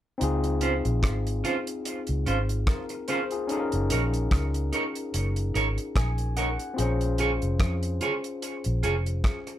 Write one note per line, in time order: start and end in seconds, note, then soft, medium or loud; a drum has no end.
0.18 0.81 C#2 loud
0.18 3.44 C4 medium
0.18 3.45 D#4 medium
0.18 2.64 F4 medium
0.18 closed hi-hat medium
0.23 2.65 G#4 medium
0.44 closed hi-hat medium
0.61 0.72 C#4 medium
0.61 0.72 F4 medium
0.61 0.73 C5 medium
0.61 closed hi-hat medium
0.85 1.02 A#1 loud
0.85 closed hi-hat soft
1.03 1.42 G#1 medium
1.03 kick loud
1.03 cross-stick medium
1.03 closed hi-hat medium
1.27 closed hi-hat soft
1.44 1.54 C#4 medium
1.44 1.55 F4 medium
1.44 1.55 C5 medium
1.44 closed hi-hat medium
1.67 closed hi-hat medium
1.85 closed hi-hat medium
2.07 2.26 C#2 medium
2.07 closed hi-hat soft
2.26 2.65 G#1 medium
2.26 2.36 C#4 medium
2.26 2.37 F4 medium
2.26 2.37 C5 medium
2.26 closed hi-hat medium
2.49 closed hi-hat medium
2.67 3.06 A#4 medium
2.67 kick loud
2.67 cross-stick loud
2.67 closed hi-hat medium
2.89 muted clean electric guitar stroke soft
2.89 closed hi-hat soft
3.08 3.19 C#4 medium
3.08 3.19 F4 medium
3.08 3.30 G#4 medium
3.08 3.30 C5 medium
3.08 3.19 C5 medium
3.08 closed hi-hat medium
3.31 3.71 F4 soft
3.31 3.50 G#4 medium
3.31 closed hi-hat soft
3.48 6.73 C#4 medium
3.48 6.74 D#4 medium
3.48 closed hi-hat medium
3.52 6.75 G#4 medium
3.52 3.59 A4 medium
3.60 6.79 A#4 medium
3.72 3.90 F#1 medium
3.72 closed hi-hat soft
3.90 4.30 A#1 medium
3.90 4.01 D#4 medium
3.90 4.01 A#4 medium
3.90 4.02 C#5 medium
3.90 closed hi-hat medium
4.14 closed hi-hat soft
4.31 4.70 C#2 medium
4.31 kick loud
4.31 cross-stick medium
4.31 closed hi-hat medium
4.54 closed hi-hat medium
4.73 4.83 D#4 medium
4.73 4.83 A#4 medium
4.73 4.84 C#5 medium
4.73 closed hi-hat medium
4.95 closed hi-hat medium
5.14 5.53 F#1 medium
5.14 closed hi-hat medium
5.36 closed hi-hat soft
5.54 5.76 G#1 medium
5.54 5.65 D#4 medium
5.54 5.65 A#4 medium
5.54 5.66 C#5 medium
5.54 closed hi-hat medium
5.78 closed hi-hat soft
5.96 6.56 A#1 medium
5.96 6.34 G#5 medium
5.96 kick loud
5.96 cross-stick loud
5.96 closed hi-hat medium
6.18 closed hi-hat soft
6.37 6.47 D#4 medium
6.37 6.47 A#4 medium
6.37 6.48 C#5 medium
6.37 6.75 F#5 medium
6.37 closed hi-hat medium
6.59 closed hi-hat soft
6.74 6.83 C4 medium
6.74 9.59 F4 medium
6.74 9.59 G#4 medium
6.78 7.38 A#1 loud
6.78 9.59 C#4 medium
6.78 9.59 C5 medium
6.78 closed hi-hat medium
7.01 closed hi-hat medium
7.18 7.29 F4 medium
7.18 7.30 G#4 medium
7.18 7.30 C#5 medium
7.18 closed hi-hat medium
7.42 7.59 F1 medium
7.42 closed hi-hat soft
7.60 7.99 F2 medium
7.60 kick loud
7.60 cross-stick loud
7.60 closed hi-hat medium
7.83 closed hi-hat soft
8.01 8.11 F4 medium
8.01 8.12 G#4 medium
8.01 8.12 C#5 medium
8.01 closed hi-hat medium
8.24 closed hi-hat medium
8.42 closed hi-hat medium
8.64 8.83 A#1 medium
8.64 closed hi-hat medium
8.83 8.93 F4 medium
8.83 8.94 G#4 medium
8.83 8.94 C#5 medium
8.83 closed hi-hat medium
9.06 closed hi-hat soft
9.24 kick loud
9.24 cross-stick medium
9.24 closed hi-hat medium
9.47 muted clean electric guitar stroke medium
9.47 closed hi-hat soft